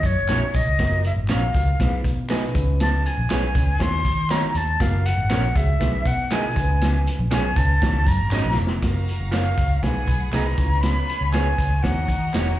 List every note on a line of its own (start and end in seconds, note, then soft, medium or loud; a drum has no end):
0.03 0.14 F#2 medium
0.03 0.57 C#5 medium
0.03 kick medium
0.03 closed hi-hat medium
0.03 tambourine medium
0.17 0.27 F#1 medium
0.28 0.39 A#1 medium
0.28 0.41 C#4 medium
0.28 0.56 D#4 medium
0.28 0.56 F#4 medium
0.28 0.42 F#4 medium
0.28 0.42 A#4 medium
0.28 0.56 C#5 medium
0.28 0.42 C#5 medium
0.28 snare medium
0.28 clap loud
0.28 closed hi-hat medium
0.28 tambourine medium
0.54 0.64 A#1 medium
0.54 1.05 D#5 medium
0.54 kick medium
0.54 closed hi-hat medium
0.54 tambourine medium
0.66 0.76 C#2 medium
0.79 1.10 F#1 medium
0.79 1.07 F4 medium
0.79 1.07 F#4 medium
0.79 1.07 A#4 loud
0.79 kick loud
0.79 snare loud
0.79 closed hi-hat medium
0.79 tambourine medium
1.04 1.12 E5 medium
1.04 closed hi-hat medium
1.04 tambourine soft
1.16 1.27 G#1 medium
1.28 1.49 A#1 medium
1.28 1.42 C#4 medium
1.28 1.43 F4 medium
1.28 1.42 F4 medium
1.28 1.44 F#4 medium
1.28 1.42 A#4 loud
1.28 1.44 A#4 medium
1.28 1.43 C#5 loud
1.28 snare loud
1.28 clap medium
1.28 closed hi-hat medium
1.28 tambourine medium
1.32 2.02 F5 medium
1.54 1.75 C#2 medium
1.54 1.68 F4 medium
1.54 1.69 F#4 medium
1.54 1.69 A#4 medium
1.54 kick medium
1.54 closed hi-hat medium
1.54 tambourine medium
1.80 2.00 B1 medium
1.80 2.07 D#4 medium
1.80 2.07 G#4 medium
1.80 2.08 B4 medium
1.80 kick medium
1.80 snare loud
1.80 closed hi-hat medium
1.80 tambourine soft
2.04 2.45 B2 medium
2.04 kick medium
2.04 closed hi-hat medium
2.04 tambourine medium
2.29 2.42 B3 medium
2.29 2.55 D#4 medium
2.29 2.43 F#4 medium
2.29 2.55 G#4 medium
2.29 2.43 G#4 medium
2.29 2.53 B4 loud
2.29 2.43 D#5 medium
2.29 snare loud
2.29 clap loud
2.29 closed hi-hat medium
2.29 tambourine loud
2.44 snare soft
2.54 3.06 C#2 loud
2.54 3.15 C#4 medium
2.54 3.15 F4 medium
2.54 3.15 B4 loud
2.54 kick loud
2.54 closed hi-hat medium
2.54 tambourine medium
2.80 3.08 A5 loud
2.80 snare loud
2.80 closed hi-hat medium
2.80 tambourine medium
3.06 3.84 G#5 loud
3.06 closed hi-hat medium
3.18 3.28 A#1 medium
3.30 3.55 B1 medium
3.30 3.43 B3 loud
3.30 3.44 C#4 medium
3.30 3.44 F4 medium
3.30 3.43 F4 medium
3.30 3.43 G#4 medium
3.30 3.44 B4 medium
3.30 3.43 C#5 loud
3.30 snare loud
3.30 clap loud
3.30 closed hi-hat loud
3.30 tambourine medium
3.55 3.76 C#2 medium
3.55 3.69 C#4 medium
3.55 3.69 F4 medium
3.55 3.69 B4 medium
3.55 kick medium
3.55 closed hi-hat medium
3.55 tambourine medium
3.79 4.01 D#2 loud
3.79 4.07 D#4 medium
3.79 4.07 F#4 medium
3.79 4.07 C#5 medium
3.79 4.33 C6 loud
3.79 kick medium
3.79 snare loud
3.79 closed hi-hat medium
4.05 4.46 D#3 loud
4.05 kick medium
4.05 closed hi-hat medium
4.05 tambourine medium
4.29 4.43 A#3 medium
4.29 4.57 D#4 medium
4.29 4.43 D#4 medium
4.29 4.58 F#4 medium
4.29 4.43 F#4 medium
4.29 4.58 C#5 medium
4.29 4.44 C#5 medium
4.29 4.59 A#5 medium
4.29 snare loud
4.29 clap loud
4.29 closed hi-hat medium
4.29 tambourine loud
4.43 snare soft
4.55 4.76 D#2 medium
4.55 4.83 A5 loud
4.55 closed hi-hat medium
4.55 tambourine medium
4.80 5.11 F#1 loud
4.80 5.08 F4 loud
4.80 5.08 F#4 medium
4.80 5.08 A#4 loud
4.80 5.07 F5 loud
4.80 kick loud
4.80 snare loud
4.80 closed hi-hat loud
4.80 tambourine medium
5.06 5.58 F#5 medium
5.06 closed hi-hat medium
5.17 5.28 G#1 medium
5.30 5.51 A#1 medium
5.30 5.43 C#4 medium
5.30 5.44 F4 medium
5.30 5.43 F4 medium
5.30 5.44 F#4 medium
5.30 5.45 A#4 medium
5.30 5.44 A#4 medium
5.30 5.44 C#5 loud
5.30 snare loud
5.30 clap loud
5.30 closed hi-hat medium
5.30 tambourine loud
5.55 5.76 C#2 medium
5.55 5.69 F4 medium
5.55 5.69 F#4 medium
5.55 5.69 G#4 medium
5.55 6.09 E5 medium
5.55 kick loud
5.55 closed hi-hat medium
5.55 tambourine medium
5.79 6.01 B1 loud
5.79 6.08 D#4 medium
5.79 6.08 G#4 medium
5.79 6.08 B4 medium
5.79 kick medium
5.79 snare loud
5.79 closed hi-hat loud
5.79 tambourine soft
6.05 6.47 B2 medium
6.05 6.34 F#5 loud
6.05 kick medium
6.05 closed hi-hat medium
6.05 tambourine medium
6.30 6.43 B3 medium
6.30 6.56 D#4 medium
6.30 6.44 F#4 medium
6.30 6.56 G#4 medium
6.30 6.44 G#4 loud
6.30 6.54 A#4 medium
6.30 6.44 D#5 loud
6.30 7.07 G#5 medium
6.30 snare loud
6.30 clap loud
6.30 closed hi-hat medium
6.30 tambourine loud
6.45 snare soft
6.55 7.07 C#2 loud
6.55 7.16 C#4 medium
6.55 7.17 F4 medium
6.55 6.62 A#4 medium
6.55 kick loud
6.55 closed hi-hat medium
6.55 tambourine medium
6.62 7.19 B4 medium
6.81 snare loud
6.81 closed hi-hat loud
6.81 tambourine medium
7.07 closed hi-hat medium
7.07 tambourine soft
7.19 7.29 A#1 loud
7.31 7.52 B1 medium
7.31 7.44 B3 medium
7.31 7.45 C#4 medium
7.31 7.45 F4 medium
7.31 7.44 F4 medium
7.31 7.44 G#4 loud
7.31 7.45 B4 medium
7.31 7.45 C#5 medium
7.31 7.58 G#5 medium
7.31 snare loud
7.31 clap medium
7.31 closed hi-hat loud
7.31 tambourine loud
7.56 7.77 C#2 medium
7.56 7.71 C#4 medium
7.56 7.71 F4 medium
7.56 7.71 B4 medium
7.56 8.09 A5 loud
7.56 kick loud
7.56 closed hi-hat medium
7.56 tambourine medium
7.82 7.92 D#2 loud
7.82 8.09 D#4 medium
7.82 8.09 F#4 medium
7.82 8.10 C#5 medium
7.82 kick medium
7.82 snare loud
7.82 closed hi-hat loud
7.82 tambourine soft
7.94 8.04 C#2 medium
8.07 8.17 F#2 medium
8.07 8.58 A#5 loud
8.07 kick medium
8.07 closed hi-hat medium
8.07 tambourine medium
8.19 8.40 G#1 medium
8.31 8.45 C#4 medium
8.31 8.59 D#4 medium
8.31 8.59 F#4 medium
8.31 8.45 F#4 medium
8.31 8.45 A#4 medium
8.31 8.59 C#5 medium
8.31 8.46 D#5 medium
8.31 snare soft
8.31 clap loud
8.31 tambourine loud
8.45 8.55 A#1 medium
8.51 snare medium
8.57 8.78 F1 medium
8.57 tambourine medium
8.67 snare loud
8.82 9.03 F#1 medium
8.82 9.09 F4 medium
8.82 9.10 F#4 medium
8.82 9.81 F#4 medium
8.82 9.10 A#4 medium
8.82 9.81 F5 medium
8.82 9.81 A#5 medium
8.82 kick loud
8.82 snare loud
8.82 closed hi-hat medium
8.82 tambourine medium
9.08 closed hi-hat medium
9.08 tambourine soft
9.20 9.51 F#1 medium
9.31 9.44 F4 medium
9.31 9.60 F4 medium
9.31 9.60 F#4 medium
9.31 9.45 A#4 medium
9.31 9.60 A#4 medium
9.31 9.45 C#5 medium
9.31 9.84 F5 medium
9.31 9.45 F5 medium
9.31 snare loud
9.31 clap medium
9.31 closed hi-hat medium
9.31 tambourine medium
9.58 9.78 C#2 medium
9.58 kick medium
9.58 closed hi-hat medium
9.58 tambourine soft
9.83 10.03 B1 medium
9.83 10.10 D#4 medium
9.83 10.57 G#4 medium
9.83 10.10 G#4 medium
9.83 10.10 B4 medium
9.83 10.57 F#5 medium
9.83 10.32 G#5 medium
9.83 10.57 B5 medium
9.83 kick medium
9.83 snare loud
9.83 closed hi-hat medium
10.07 10.28 B1 medium
10.07 kick medium
10.07 closed hi-hat medium
10.07 tambourine medium
10.32 10.53 C2 medium
10.32 10.58 D#4 medium
10.32 10.45 D#4 medium
10.32 10.58 G#4 medium
10.32 10.46 G#4 medium
10.32 10.57 B4 medium
10.32 10.46 B4 medium
10.32 10.46 D#5 medium
10.32 10.83 A#5 medium
10.32 snare medium
10.32 clap loud
10.32 closed hi-hat medium
10.32 tambourine medium
10.46 snare soft
10.57 10.99 C#2 medium
10.57 11.18 C#4 medium
10.57 10.64 E4 medium
10.57 11.81 F4 medium
10.57 11.19 B4 medium
10.57 11.81 C#5 medium
10.57 11.81 G#5 medium
10.57 kick medium
10.57 closed hi-hat medium
10.57 tambourine medium
10.64 11.22 F4 medium
10.81 11.31 B5 loud
10.81 snare loud
10.81 closed hi-hat medium
10.81 tambourine medium
11.09 closed hi-hat medium
11.21 11.52 C#2 medium
11.32 11.46 B3 medium
11.32 11.61 C#4 medium
11.32 11.61 F4 medium
11.32 11.46 F4 medium
11.32 11.46 G#4 medium
11.32 11.61 B4 medium
11.32 11.47 C#5 medium
11.32 11.84 G#5 medium
11.32 snare loud
11.32 clap medium
11.32 closed hi-hat medium
11.32 tambourine medium
11.58 11.79 C#2 medium
11.58 kick medium
11.58 closed hi-hat medium
11.58 tambourine medium
11.83 12.04 D#2 medium
11.83 12.11 D#4 medium
11.83 12.11 F#4 medium
11.83 12.60 F#4 medium
11.83 12.11 C#5 medium
11.83 12.60 D#5 medium
11.83 12.59 F#5 medium
11.83 12.60 A#5 medium
11.83 kick medium
11.83 snare loud
11.83 closed hi-hat medium
12.08 12.29 D#3 medium
12.08 kick medium
12.08 closed hi-hat medium
12.08 tambourine medium
12.34 12.55 E1 medium
12.34 12.46 A#3 medium
12.34 12.60 D#4 medium
12.34 12.47 D#4 medium
12.34 12.60 F#4 medium
12.34 12.47 F#4 medium
12.34 12.60 C#5 medium
12.34 12.47 C#5 medium
12.34 snare loud
12.34 clap loud
12.34 closed hi-hat medium
12.34 tambourine loud
12.48 snare soft